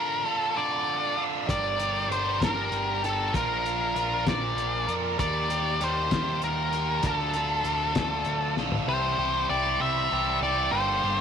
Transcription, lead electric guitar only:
0.00 0.29 A#4 medium
0.29 0.59 A4 medium
0.57 1.22 D5 medium
1.50 2.07 D5 medium
2.12 2.43 C5 medium
2.44 3.00 A#4 medium
3.05 3.36 A4 medium
3.36 4.30 A#4 medium
4.28 4.92 D5 medium
5.20 5.82 D5 medium
5.84 6.40 C5 medium
6.44 7.06 A#4 medium
7.07 8.55 A4 medium
8.89 9.46 C5 medium
9.50 9.81 D5 medium
9.82 10.38 E5 loud
10.43 10.71 D5 medium
10.72 11.21 C5 medium

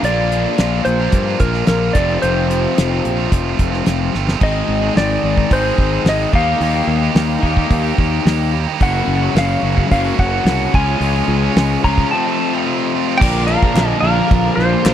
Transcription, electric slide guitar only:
0.05 0.84 D5 medium
0.85 1.42 C5 medium
1.40 1.67 A#4 medium
1.68 1.96 A#4 medium
1.93 2.22 D5 medium
2.22 3.83 C5 medium
4.43 4.97 D#5 medium
4.97 5.54 D5 medium
5.53 6.09 C5 medium
6.09 6.35 D#5 medium
6.35 7.96 F5 medium
8.83 9.38 F#5 medium
9.38 9.89 F5 medium
9.92 10.19 F5 medium
10.19 10.76 F#5 medium
10.75 11.84 G#5 loud
11.84 12.11 A#5 loud
12.11 12.62 A5 medium
13.17 13.46 G5 loud
13.47 13.99 F5 loud
14.00 14.53 F5 loud
14.56 14.94 C5 loud

